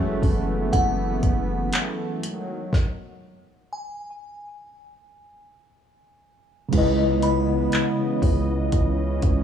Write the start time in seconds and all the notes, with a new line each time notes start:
Already playing: E3 F#3 G#3 A3 C#4 F#4 G#4 A4 E5
0.01 F#1
0.23 F#1 B3, kick, open hi-hat
0.73 F#1 F#5, kick, closed hi-hat
1.23 F#1, kick, closed hi-hat
1.73 clap, closed hi-hat
2.23 D#3 F#3, closed hi-hat
2.73 kick, snare
3.73 G#5
6.69 C#3 G#3
6.73 C#2 E3 B3 E4 B4 D#5, kick, closed hi-hat, crash
6.78 D#5
7.22 B5, closed hi-hat
7.72 clap, closed hi-hat
8.22 C#2, kick, open hi-hat
8.72 C#2 C#4, kick, closed hi-hat
9.22 C#2, kick, closed hi-hat